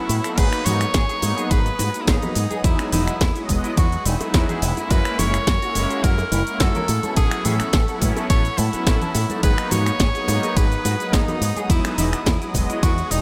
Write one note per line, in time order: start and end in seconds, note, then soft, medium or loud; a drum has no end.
0.00 0.35 A3 medium
0.00 0.39 E4 loud
0.00 0.36 F#5 medium
0.00 2.60 B5 medium
0.00 0.34 C#6 medium
0.09 0.19 A2 medium
0.09 open hi-hat loud
0.09 cabasa medium
0.24 0.63 F#3 medium
0.24 0.63 A#3 medium
0.24 0.63 B3 medium
0.24 0.63 D#4 loud
0.24 0.28 A4 medium
0.24 finger snap medium
0.24 closed hi-hat medium
0.24 cabasa soft
0.37 0.47 G#1 medium
0.37 4.86 G#4 medium
0.37 0.45 G#4 medium
0.37 0.67 B4 loud
0.37 13.21 F#5 medium
0.37 4.87 D#6 medium
0.37 kick loud
0.37 closed hi-hat medium
0.37 crash medium
0.37 ride medium
0.37 tambourine medium
0.37 cabasa soft
0.52 finger snap medium
0.52 closed hi-hat soft
0.52 tambourine soft
0.52 cabasa soft
0.65 0.84 G#2 medium
0.65 0.79 F#3 medium
0.65 0.79 A#3 medium
0.65 0.80 B3 medium
0.65 0.80 D#4 medium
0.65 0.73 F#4 loud
0.65 1.52 C#5 loud
0.65 open hi-hat loud
0.65 tambourine medium
0.65 low conga loud
0.65 cabasa medium
0.81 finger snap medium
0.81 closed hi-hat medium
0.81 tambourine soft
0.81 high bongo medium
0.81 cabasa soft
0.94 1.03 G#1 loud
0.94 1.02 G#4 medium
0.94 kick loud
0.94 snare loud
0.94 closed hi-hat medium
0.94 ride medium
0.94 tambourine medium
0.94 cabasa soft
1.09 1.48 F#3 loud
1.09 1.48 A#3 medium
1.09 1.48 B3 medium
1.09 1.48 D#4 loud
1.09 1.13 G#4 medium
1.09 closed hi-hat soft
1.09 tambourine soft
1.09 cabasa soft
1.22 1.32 G#2 medium
1.22 open hi-hat loud
1.22 tambourine medium
1.22 high bongo medium
1.22 high conga medium
1.22 cabasa medium
1.37 1.44 G#4 medium
1.37 closed hi-hat medium
1.37 tambourine soft
1.37 cabasa soft
1.50 1.69 G#1 medium
1.50 1.59 F#3 loud
1.50 1.59 A#3 medium
1.50 1.59 B3 medium
1.50 1.60 D#4 loud
1.50 1.58 G#4 medium
1.50 2.02 B4 loud
1.50 kick loud
1.50 closed hi-hat medium
1.50 ride medium
1.50 tambourine medium
1.50 high conga medium
1.50 cabasa soft
1.66 closed hi-hat soft
1.66 tambourine soft
1.66 cabasa soft
1.79 1.88 G#2 loud
1.79 1.86 F#4 loud
1.79 open hi-hat loud
1.79 tambourine medium
1.79 high bongo medium
1.79 high conga medium
1.79 cabasa medium
1.94 2.19 F#3 medium
1.94 2.19 A#3 medium
1.94 2.19 B3 medium
1.94 2.19 D#4 loud
1.94 closed hi-hat medium
1.94 tambourine soft
1.94 cabasa soft
2.01 2.08 E4 medium
2.07 2.17 G#1 medium
2.07 2.63 D#4 loud
2.07 2.15 G#4 medium
2.07 kick loud
2.07 snare loud
2.07 closed hi-hat medium
2.07 ride medium
2.07 tambourine medium
2.07 cabasa soft
2.22 2.30 F#3 medium
2.22 2.30 A#3 medium
2.22 2.30 B3 medium
2.22 2.30 F#4 loud
2.22 2.32 B4 medium
2.22 closed hi-hat soft
2.22 tambourine soft
2.22 high bongo medium
2.22 low conga medium
2.22 cabasa soft
2.35 2.45 G#2 medium
2.35 open hi-hat loud
2.35 tambourine medium
2.35 cabasa medium
2.50 2.89 F#3 medium
2.50 2.89 G#3 medium
2.50 2.90 B3 medium
2.50 2.90 D#4 loud
2.50 2.55 G#4 medium
2.50 closed hi-hat medium
2.50 tambourine soft
2.50 high conga medium
2.50 cabasa soft
2.63 2.73 E2 loud
2.63 2.90 E4 medium
2.63 2.71 E4 medium
2.63 kick loud
2.63 closed hi-hat medium
2.63 ride medium
2.63 tambourine soft
2.63 cabasa soft
2.79 finger snap medium
2.79 closed hi-hat soft
2.79 tambourine soft
2.79 high bongo medium
2.79 cabasa soft
2.92 3.07 E1 medium
2.92 3.06 F#3 medium
2.92 3.06 G#3 medium
2.92 3.06 B3 medium
2.92 3.00 D#4 loud
2.92 3.06 D#4 medium
2.92 3.46 E4 medium
2.92 open hi-hat loud
2.92 tambourine medium
2.92 low conga loud
2.92 cabasa medium
3.08 finger snap medium
3.08 muted fingered electric bass stroke soft
3.08 closed hi-hat medium
3.08 tambourine soft
3.08 cabasa soft
3.21 3.30 E2 loud
3.21 3.28 E4 medium
3.21 kick loud
3.21 snare loud
3.21 closed hi-hat medium
3.21 ride medium
3.21 tambourine medium
3.21 high bongo medium
3.21 cabasa soft
3.35 3.74 F#3 medium
3.35 3.74 G#3 medium
3.35 3.74 B3 medium
3.35 3.40 E4 medium
3.35 3.74 D#5 loud
3.35 closed hi-hat soft
3.35 tambourine soft
3.35 cabasa soft
3.49 3.58 E1 medium
3.49 kick medium
3.49 open hi-hat loud
3.49 tambourine medium
3.49 high conga medium
3.49 cabasa medium
3.64 3.71 E4 medium
3.64 closed hi-hat medium
3.64 tambourine soft
3.64 cabasa soft
3.77 3.95 E2 medium
3.77 3.86 F#3 loud
3.77 3.86 G#3 medium
3.77 3.86 B3 medium
3.77 3.86 D#4 loud
3.77 3.85 E4 medium
3.77 4.08 F#4 loud
3.77 kick loud
3.77 closed hi-hat medium
3.77 ride medium
3.77 tambourine medium
3.77 high bongo medium
3.77 high conga medium
3.77 cabasa soft
3.92 closed hi-hat soft
3.92 tambourine soft
3.92 cabasa soft
4.05 4.15 E1 loud
4.05 4.13 D#4 loud
4.05 4.93 E4 loud
4.05 open hi-hat loud
4.05 tambourine medium
4.05 high conga medium
4.05 cabasa medium
4.21 4.45 F#3 medium
4.21 4.45 G#3 medium
4.21 4.46 B3 medium
4.21 4.46 D#4 loud
4.21 closed hi-hat medium
4.21 tambourine soft
4.21 high bongo medium
4.21 cabasa soft
4.34 4.43 E2 medium
4.34 4.41 E4 medium
4.34 kick loud
4.34 snare loud
4.34 closed hi-hat medium
4.34 ride medium
4.34 tambourine medium
4.34 cabasa soft
4.49 4.56 F#3 medium
4.49 4.56 G#3 medium
4.49 4.57 B3 medium
4.49 4.57 E4 loud
4.49 4.59 G#4 medium
4.49 closed hi-hat soft
4.49 tambourine soft
4.49 low conga medium
4.49 cabasa soft
4.62 4.71 E1 medium
4.62 open hi-hat loud
4.62 tambourine medium
4.62 cabasa medium
4.77 5.16 G#3 medium
4.77 5.16 A#3 medium
4.77 5.16 C#4 medium
4.77 4.81 E4 medium
4.77 5.16 E4 medium
4.77 closed hi-hat medium
4.77 tambourine soft
4.77 high bongo medium
4.77 high conga medium
4.77 cabasa soft
4.90 5.00 F#2 loud
4.90 4.98 F#4 medium
4.90 6.87 A#4 medium
4.90 5.21 B4 loud
4.90 9.39 C#6 medium
4.90 kick loud
4.90 closed hi-hat medium
4.90 ride medium
4.90 tambourine medium
4.90 cabasa soft
5.05 finger snap medium
5.05 closed hi-hat soft
5.05 tambourine soft
5.05 cabasa soft
5.19 5.37 F#1 medium
5.19 5.32 G#3 medium
5.19 5.32 A#3 medium
5.19 5.32 C#4 medium
5.19 5.26 E4 loud
5.19 5.33 E4 medium
5.19 6.05 C#5 loud
5.19 open hi-hat loud
5.19 tambourine medium
5.19 high bongo medium
5.19 low conga medium
5.19 cabasa medium
5.34 finger snap medium
5.34 closed hi-hat medium
5.34 tambourine soft
5.34 cabasa soft
5.47 5.56 F#2 loud
5.47 5.55 F#4 loud
5.47 kick loud
5.47 snare loud
5.47 closed hi-hat medium
5.47 ride medium
5.47 tambourine medium
5.47 cabasa soft
5.62 6.00 G#3 loud
5.62 6.01 A#3 medium
5.62 6.01 C#4 medium
5.62 6.01 E4 loud
5.62 5.66 F#4 medium
5.62 closed hi-hat soft
5.62 tambourine soft
5.62 cabasa soft
5.75 5.85 F#1 medium
5.75 open hi-hat loud
5.75 tambourine medium
5.75 high bongo medium
5.75 high conga loud
5.75 cabasa medium
5.90 5.97 F#4 medium
5.90 closed hi-hat medium
5.90 tambourine soft
5.90 cabasa soft
6.03 6.22 F#2 medium
6.03 6.12 G#3 loud
6.03 6.12 A#3 medium
6.03 6.12 C#4 medium
6.03 6.12 E4 loud
6.03 6.11 F#4 medium
6.03 6.62 A#4 loud
6.03 kick loud
6.03 closed hi-hat medium
6.03 ride medium
6.03 tambourine soft
6.03 high conga medium
6.03 cabasa soft
6.18 closed hi-hat soft
6.18 tambourine soft
6.18 high bongo medium
6.18 cabasa soft
6.32 6.41 F#1 loud
6.32 6.39 E4 loud
6.32 open hi-hat loud
6.32 tambourine medium
6.32 high conga loud
6.32 cabasa medium
6.47 6.72 G#3 medium
6.47 6.72 A#3 medium
6.47 6.72 C#4 medium
6.47 6.72 E4 loud
6.47 closed hi-hat medium
6.47 tambourine soft
6.47 cabasa soft
6.60 6.69 F#2 medium
6.60 6.68 F#4 medium
6.60 7.16 A4 loud
6.60 kick loud
6.60 snare loud
6.60 closed hi-hat medium
6.60 ride medium
6.60 tambourine soft
6.60 cabasa soft
6.75 6.83 G#3 medium
6.75 6.83 A#3 medium
6.75 6.83 C#4 medium
6.75 6.83 F#4 medium
6.75 6.85 A#4 medium
6.75 closed hi-hat soft
6.75 tambourine soft
6.75 high bongo medium
6.75 low conga medium
6.75 cabasa soft
6.88 6.98 A2 medium
6.88 9.41 A3 medium
6.88 9.41 B5 medium
6.88 open hi-hat loud
6.88 tambourine loud
6.88 cabasa medium
7.03 7.42 F#3 medium
7.03 7.42 B3 medium
7.03 7.42 C#4 medium
7.03 7.42 E4 medium
7.03 7.08 A4 medium
7.03 closed hi-hat soft
7.03 tambourine soft
7.03 high conga medium
7.03 cabasa soft
7.16 7.26 A1 medium
7.16 7.46 G#4 loud
7.16 7.24 A4 medium
7.16 kick loud
7.16 closed hi-hat medium
7.16 ride medium
7.16 tambourine medium
7.16 high bongo medium
7.16 cabasa soft
7.31 finger snap medium
7.31 closed hi-hat soft
7.31 tambourine soft
7.31 cabasa soft
7.45 7.60 A2 medium
7.45 7.58 F#3 medium
7.45 7.59 B3 medium
7.45 7.59 C#4 medium
7.45 7.59 E4 medium
7.45 7.53 G#4 loud
7.45 8.03 A4 loud
7.45 open hi-hat loud
7.45 tambourine loud
7.45 low conga medium
7.45 cabasa medium
7.60 finger snap medium
7.60 muted fingered electric bass stroke soft
7.60 closed hi-hat medium
7.60 tambourine soft
7.60 cabasa soft
7.73 7.83 A1 loud
7.73 7.81 A4 loud
7.73 kick loud
7.73 snare loud
7.73 closed hi-hat medium
7.73 ride medium
7.73 tambourine medium
7.73 high bongo medium
7.73 cabasa soft
7.88 8.27 F#3 medium
7.88 8.27 B3 medium
7.88 8.27 C#4 medium
7.88 8.27 E4 loud
7.88 7.93 A4 medium
7.88 closed hi-hat soft
7.88 tambourine soft
7.88 cabasa soft
8.02 8.11 A2 medium
8.02 kick medium
8.02 open hi-hat loud
8.02 tambourine medium
8.02 high conga loud
8.02 cabasa medium
8.16 8.24 A4 medium
8.16 closed hi-hat medium
8.16 tambourine soft
8.16 high bongo medium
8.16 cabasa soft
8.30 8.48 A1 medium
8.30 8.38 F#3 loud
8.30 8.38 B3 medium
8.30 8.39 C#4 medium
8.30 8.39 E4 loud
8.30 8.38 A4 medium
8.30 8.59 C#5 loud
8.30 kick loud
8.30 closed hi-hat medium
8.30 ride medium
8.30 tambourine medium
8.30 high conga medium
8.30 cabasa soft
8.45 closed hi-hat soft
8.45 tambourine soft
8.45 cabasa soft
8.57 8.68 A2 loud
8.57 9.43 E4 loud
8.57 8.63 A5 medium
8.57 open hi-hat loud
8.57 tambourine medium
8.57 high conga loud
8.57 cabasa medium
8.73 8.98 F#3 medium
8.73 8.98 B3 medium
8.73 8.98 C#4 medium
8.73 8.98 E4 loud
8.73 muted fingered electric bass stroke soft
8.73 closed hi-hat medium
8.73 tambourine soft
8.73 high bongo medium
8.73 cabasa soft
8.87 8.96 A1 medium
8.87 8.94 A4 medium
8.87 kick loud
8.87 snare loud
8.87 closed hi-hat medium
8.87 ride medium
8.87 tambourine medium
8.87 cabasa soft
9.01 9.09 F#3 medium
9.01 9.09 B3 medium
9.01 9.09 C#4 medium
9.01 9.09 F#4 loud
9.01 9.06 A5 medium
9.01 closed hi-hat soft
9.01 tambourine soft
9.01 low conga medium
9.01 cabasa soft
9.15 9.24 A2 loud
9.15 open hi-hat loud
9.15 tambourine loud
9.15 high bongo medium
9.15 cabasa medium
9.29 9.68 F#3 medium
9.29 9.68 A#3 medium
9.29 9.69 B3 medium
9.29 9.69 D#4 medium
9.29 9.37 A4 medium
9.29 closed hi-hat medium
9.29 tambourine soft
9.29 high conga medium
9.29 cabasa soft
9.43 9.53 G#1 loud
9.43 11.68 G#4 medium
9.43 9.51 G#4 medium
9.43 9.73 B4 loud
9.43 11.68 B5 medium
9.43 13.21 D#6 medium
9.43 kick loud
9.43 closed hi-hat medium
9.43 ride medium
9.43 tambourine medium
9.43 cabasa soft
9.58 finger snap medium
9.58 closed hi-hat soft
9.58 tambourine soft
9.58 cabasa soft
9.71 9.90 G#2 medium
9.71 9.85 F#3 medium
9.71 9.85 A#3 medium
9.71 9.85 B3 medium
9.71 9.85 D#4 medium
9.71 9.79 F#4 loud
9.71 10.58 C#5 loud
9.71 open hi-hat loud
9.71 tambourine loud
9.71 low conga medium
9.71 cabasa medium
9.86 finger snap medium
9.86 closed hi-hat medium
9.86 tambourine soft
9.86 high bongo soft
9.86 cabasa soft
9.99 10.09 G#1 loud
9.99 10.08 G#4 loud
9.99 kick loud
9.99 snare loud
9.99 closed hi-hat medium
9.99 ride medium
9.99 tambourine medium
9.99 cabasa soft
10.14 10.53 F#3 medium
10.14 10.53 A#3 medium
10.14 10.54 B3 medium
10.14 10.54 D#4 loud
10.14 10.19 G#4 medium
10.14 closed hi-hat soft
10.14 tambourine soft
10.14 cabasa soft
10.28 10.37 G#2 medium
10.28 open hi-hat loud
10.28 tambourine medium
10.28 high bongo medium
10.28 high conga medium
10.28 cabasa medium
10.43 10.50 G#4 medium
10.43 closed hi-hat medium
10.43 tambourine soft
10.43 cabasa soft
10.56 10.74 G#1 medium
10.56 10.65 F#3 loud
10.56 10.65 A#3 medium
10.56 10.65 B3 medium
10.56 10.65 D#4 loud
10.56 10.64 G#4 medium
10.56 11.15 B4 loud
10.56 kick loud
10.56 closed hi-hat medium
10.56 ride medium
10.56 tambourine medium
10.56 high conga medium
10.56 cabasa soft
10.71 closed hi-hat soft
10.71 tambourine soft
10.71 cabasa soft
10.85 10.94 G#2 loud
10.85 10.93 F#4 loud
10.85 open hi-hat loud
10.85 tambourine medium
10.85 high bongo soft
10.85 high conga medium
10.85 cabasa medium
11.00 11.24 F#3 medium
11.00 11.25 A#3 medium
11.00 11.25 B3 medium
11.00 11.25 D#4 loud
11.00 closed hi-hat medium
11.00 tambourine soft
11.00 cabasa soft
11.13 11.22 G#1 medium
11.13 11.70 D#4 medium
11.13 11.21 G#4 medium
11.13 kick loud
11.13 snare loud
11.13 closed hi-hat medium
11.13 ride medium
11.13 tambourine medium
11.13 cabasa soft
11.28 11.35 F#3 medium
11.28 11.36 A#3 medium
11.28 11.36 B3 medium
11.28 11.36 F#4 loud
11.28 11.38 B4 medium
11.28 closed hi-hat soft
11.28 tambourine soft
11.28 high bongo medium
11.28 low conga medium
11.28 cabasa soft
11.41 11.51 G#2 medium
11.41 open hi-hat loud
11.41 tambourine loud
11.41 cabasa medium
11.56 11.95 F#3 medium
11.56 11.95 G#3 medium
11.56 11.95 B3 medium
11.56 11.95 D#4 loud
11.56 11.61 G#4 medium
11.56 closed hi-hat soft
11.56 tambourine soft
11.56 high conga medium
11.56 cabasa soft
11.70 11.79 E2 loud
11.70 11.77 E4 medium
11.70 11.96 E4 loud
11.70 13.21 G#4 medium
11.70 kick loud
11.70 closed hi-hat medium
11.70 ride medium
11.70 tambourine medium
11.70 cabasa soft
11.85 finger snap medium
11.85 closed hi-hat soft
11.85 tambourine soft
11.85 high bongo medium
11.85 cabasa soft
11.98 12.12 E1 medium
11.98 12.11 F#3 medium
11.98 12.11 G#3 medium
11.98 12.12 B3 medium
11.98 12.06 D#4 loud
11.98 12.12 D#4 medium
11.98 12.52 E4 medium
11.98 open hi-hat loud
11.98 tambourine loud
11.98 low conga medium
11.98 cabasa medium
12.12 finger snap medium
12.12 muted fingered electric bass stroke soft
12.12 closed hi-hat medium
12.12 tambourine soft
12.12 cabasa soft
12.26 12.35 E2 loud
12.26 12.34 E4 loud
12.26 kick loud
12.26 snare loud
12.26 closed hi-hat medium
12.26 ride medium
12.26 tambourine soft
12.26 high bongo medium
12.26 cabasa soft
12.41 12.80 F#3 loud
12.41 12.80 G#3 medium
12.41 12.80 B3 medium
12.41 12.45 E4 medium
12.41 12.80 D#5 loud
12.41 closed hi-hat soft
12.41 tambourine soft
12.41 cabasa soft
12.54 12.64 E1 medium
12.54 kick medium
12.54 open hi-hat loud
12.54 tambourine loud
12.54 high conga medium
12.54 cabasa medium
12.69 12.76 E4 medium
12.69 closed hi-hat medium
12.69 tambourine soft
12.69 cabasa soft
12.82 13.01 E2 medium
12.82 12.91 F#3 loud
12.82 12.91 G#3 medium
12.82 12.91 B3 medium
12.82 12.92 D#4 loud
12.82 12.90 E4 medium
12.82 13.12 F#4 loud
12.82 kick loud
12.82 closed hi-hat medium
12.82 ride medium
12.82 tambourine medium
12.82 high bongo medium
12.82 high conga medium
12.82 cabasa soft
12.98 closed hi-hat soft
12.98 tambourine soft
12.98 cabasa soft
13.11 13.20 E1 loud
13.11 13.21 D#4 loud
13.11 13.19 D#4 loud
13.11 open hi-hat loud
13.11 tambourine medium
13.11 high conga medium
13.11 cabasa medium